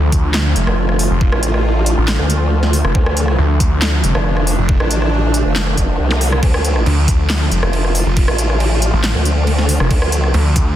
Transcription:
0.00 0.54 D2 loud
0.00 10.76 D3 medium
0.00 10.76 F3 medium
0.00 10.76 A3 medium
0.00 2.94 F4 medium
0.12 kick loud
0.12 closed hi-hat medium
0.34 snare loud
0.34 clap loud
0.56 0.65 F1 loud
0.56 closed hi-hat medium
0.67 1.09 F1 loud
0.67 cross-stick medium
0.89 cross-stick medium
0.99 open hi-hat loud
1.11 1.31 F1 loud
1.21 kick loud
1.32 1.96 A1 loud
1.32 cross-stick medium
1.43 closed hi-hat medium
1.54 cross-stick medium
1.86 closed hi-hat medium
1.98 2.18 A1 loud
2.08 snare loud
2.08 clap loud
2.19 2.83 D2 loud
2.19 cross-stick medium
2.30 closed hi-hat medium
2.63 snare soft
2.73 open hi-hat medium
2.84 2.93 F1 loud
2.84 cross-stick medium
2.95 3.37 D2 loud
2.95 6.42 D4 medium
2.95 kick loud
3.06 cross-stick medium
3.17 closed hi-hat medium
3.28 cross-stick medium
3.38 4.02 D2 loud
3.60 kick loud
3.60 closed hi-hat medium
3.82 snare loud
3.82 clap loud
4.04 4.13 F1 medium
4.04 closed hi-hat medium
4.15 4.57 F1 loud
4.15 cross-stick medium
4.37 cross-stick medium
4.47 open hi-hat medium
4.58 4.78 F1 loud
4.69 kick loud
4.80 5.44 A1 loud
4.80 cross-stick medium
4.91 closed hi-hat medium
5.02 cross-stick medium
5.34 closed hi-hat medium
5.45 5.76 F1 loud
5.56 snare loud
5.56 clap medium
5.67 cross-stick medium
5.78 5.98 F1 loud
5.78 kick medium
5.78 closed hi-hat medium
5.99 6.41 C2 loud
6.11 snare soft
6.11 zap medium
6.21 open hi-hat medium
6.32 cross-stick medium
6.43 6.85 D2 loud
6.43 9.89 F4 medium
6.43 kick loud
6.43 crash medium
6.54 cross-stick medium
6.65 closed hi-hat medium
6.76 cross-stick medium
6.86 7.50 D2 loud
6.86 crash medium
7.08 kick loud
7.08 closed hi-hat medium
7.30 snare loud
7.30 clap medium
7.30 crash medium
7.51 7.61 F1 loud
7.51 closed hi-hat medium
7.63 8.04 F1 loud
7.63 cross-stick medium
7.73 crash soft
7.85 cross-stick medium
7.95 open hi-hat medium
8.06 8.26 F1 loud
8.17 kick loud
8.17 crash medium
8.28 8.91 A1 loud
8.28 cross-stick medium
8.38 closed hi-hat medium
8.50 cross-stick medium
8.60 crash medium
8.82 closed hi-hat medium
8.93 9.13 A1 loud
9.04 snare loud
9.04 clap medium
9.04 crash medium
9.15 9.78 D2 loud
9.15 cross-stick medium
9.25 closed hi-hat medium
9.47 crash soft
9.58 snare soft
9.69 open hi-hat loud
9.80 9.89 F1 loud
9.80 cross-stick medium
9.91 10.32 D2 loud
9.91 10.76 D4 medium
9.91 kick loud
9.91 crash medium
10.02 cross-stick medium
10.12 closed hi-hat medium
10.24 cross-stick soft
10.34 10.76 D2 loud
10.34 crash soft
10.56 kick loud
10.56 closed hi-hat medium

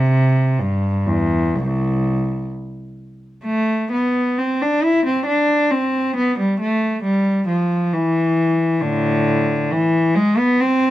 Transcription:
0.00 0.59 C3 medium
0.59 1.07 G2 medium
1.07 1.55 E2 medium
1.55 2.49 C2 medium
3.44 3.88 A3 medium
3.92 4.37 B3 medium
4.39 4.61 C4 medium
4.61 4.84 D4 medium
4.84 5.06 E4 medium
5.06 5.28 C4 medium
5.26 5.71 D4 medium
5.71 6.16 C4 medium
6.16 6.38 B3 medium
6.39 6.60 G3 medium
6.60 7.03 A3 medium
7.03 7.47 G3 medium
7.48 7.91 F3 medium
7.93 8.82 E3 medium
8.81 9.66 A2 medium
8.81 9.70 D3 medium
9.71 10.15 E3 medium
10.15 10.37 G#3 medium
10.38 10.60 B3 medium
10.60 10.90 C4 medium

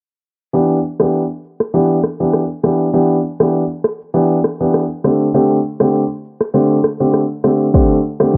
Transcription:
0.53 0.76 E3 medium
0.53 0.76 B3 medium
0.53 0.77 D4 medium
0.53 0.77 G4 medium
0.53 shaker medium
0.83 shaker medium
1.00 1.21 E3 medium
1.00 1.21 B3 medium
1.00 1.21 D4 medium
1.00 1.21 G4 medium
1.00 cross-stick loud
1.00 shaker medium
1.14 shaker medium
1.44 shaker soft
1.60 cross-stick medium
1.60 shaker medium
1.74 1.96 E3 medium
1.74 1.96 B3 medium
1.74 1.96 D4 medium
1.74 1.97 G4 medium
1.74 shaker medium
2.03 cross-stick medium
2.03 shaker soft
2.20 2.41 E3 medium
2.20 2.41 B3 medium
2.20 2.41 D4 medium
2.20 2.41 G4 medium
2.20 shaker medium
2.33 cross-stick medium
2.33 shaker medium
2.63 2.86 E3 medium
2.63 2.86 B3 medium
2.63 2.86 D4 medium
2.63 2.86 G4 medium
2.63 cross-stick medium
2.63 shaker soft
2.80 shaker medium
2.93 3.16 E3 medium
2.93 3.16 B3 medium
2.93 3.16 D4 medium
2.93 3.16 G4 loud
2.93 shaker medium
3.23 shaker medium
3.40 3.61 E3 medium
3.40 3.61 B3 medium
3.40 3.61 D4 medium
3.40 3.61 G4 medium
3.40 cross-stick loud
3.40 shaker medium
3.54 shaker medium
3.84 cross-stick loud
3.84 shaker soft
4.01 shaker medium
4.14 4.36 E3 medium
4.14 4.36 B3 medium
4.14 4.37 D4 medium
4.14 4.37 G4 loud
4.14 shaker medium
4.44 cross-stick medium
4.44 shaker soft
4.60 4.81 E3 medium
4.60 4.81 B3 medium
4.60 4.81 D4 medium
4.60 4.81 G4 medium
4.60 shaker medium
4.74 cross-stick medium
4.74 shaker medium
5.04 5.26 D3 medium
5.04 5.27 A3 medium
5.04 5.27 C4 medium
5.04 5.27 G4 medium
5.04 cross-stick medium
5.04 shaker medium
5.21 shaker medium
5.34 5.57 D3 medium
5.34 5.57 A3 medium
5.34 5.57 C4 medium
5.34 5.57 G4 loud
5.34 shaker medium
5.64 shaker medium
5.80 6.01 D3 medium
5.80 6.01 A3 medium
5.80 6.01 C4 medium
5.80 6.02 G4 medium
5.80 cross-stick loud
5.80 shaker medium
5.94 shaker medium
6.24 shaker soft
6.40 cross-stick medium
6.40 shaker medium
6.54 6.76 D3 medium
6.54 6.76 A3 medium
6.54 6.76 C4 medium
6.54 6.77 G4 medium
6.54 shaker medium
6.84 cross-stick medium
6.84 shaker medium
7.00 7.21 D3 medium
7.00 7.21 A3 medium
7.00 7.21 C4 medium
7.00 7.21 G4 medium
7.00 shaker medium
7.14 cross-stick medium
7.14 shaker medium
7.44 7.66 D3 medium
7.44 7.66 A3 medium
7.44 7.67 C4 medium
7.44 7.67 G4 medium
7.44 cross-stick medium
7.44 shaker soft
7.61 shaker medium
7.74 7.96 D3 medium
7.74 7.96 A3 medium
7.74 7.97 C4 medium
7.74 7.97 G4 loud
7.74 kick loud
7.74 shaker medium
8.04 shaker medium
8.20 8.37 D3 medium
8.20 8.37 A3 medium
8.20 8.37 C4 medium
8.20 8.37 G4 medium
8.20 cross-stick loud
8.20 shaker medium
8.34 kick medium

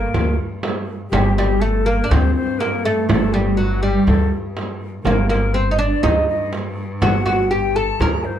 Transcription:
0.00 1.12 G2 medium
0.00 0.36 A#3 medium
0.00 0.38 A#4 medium
0.14 0.36 D2 medium
0.14 frame drum medium
0.63 frame drum medium
1.11 1.99 G1 medium
1.11 5.05 G2 medium
1.11 1.37 G3 medium
1.11 1.34 G4 medium
1.11 frame drum medium
1.37 1.61 G3 medium
1.37 1.62 G4 medium
1.37 frame drum medium
1.60 1.84 A3 medium
1.60 1.87 A4 medium
1.86 2.04 A#3 medium
1.86 2.12 A#4 medium
2.04 2.11 D4 medium
2.10 2.32 D2 medium
2.10 2.60 C4 medium
2.10 2.35 C5 medium
2.10 frame drum medium
2.35 2.61 C5 medium
2.59 2.83 A#3 medium
2.59 2.79 A#4 medium
2.59 frame drum medium
2.79 2.86 A#4 soft
2.84 3.33 A3 medium
2.84 3.09 A4 medium
3.09 3.96 G1 medium
3.09 3.35 A4 medium
3.09 frame drum loud
3.33 3.59 G3 medium
3.33 3.60 G4 medium
3.33 frame drum soft
3.57 3.82 F#3 medium
3.57 3.83 F#4 medium
3.82 4.28 G3 medium
3.82 4.06 G4 medium
4.07 4.29 D2 medium
4.07 4.30 A4 medium
4.07 frame drum medium
4.57 frame drum medium
5.03 5.92 G1 medium
5.03 8.39 G2 medium
5.03 5.29 A#3 medium
5.03 5.27 A#4 medium
5.03 frame drum medium
5.29 5.55 A#3 medium
5.29 5.56 A#4 medium
5.29 frame drum medium
5.54 5.71 C4 medium
5.54 5.81 C5 medium
5.71 5.78 D#4 medium
5.79 6.03 D4 medium
5.79 6.05 D5 medium
6.03 6.25 D2 medium
6.03 6.49 D#4 medium
6.03 6.28 D#5 medium
6.03 frame drum medium
6.29 6.51 D#5 medium
6.53 frame drum medium
7.02 7.89 G1 medium
7.02 7.24 F#4 medium
7.02 7.25 F#5 medium
7.02 frame drum medium
7.26 7.50 F#4 medium
7.26 7.53 F#5 medium
7.26 frame drum medium
7.51 7.75 G4 medium
7.51 7.77 G5 medium
7.76 8.01 A4 medium
7.76 8.02 A5 medium
8.00 8.22 D2 medium
8.00 8.39 A#4 medium
8.00 8.26 A#5 medium
8.00 frame drum medium
8.24 8.39 C5 medium

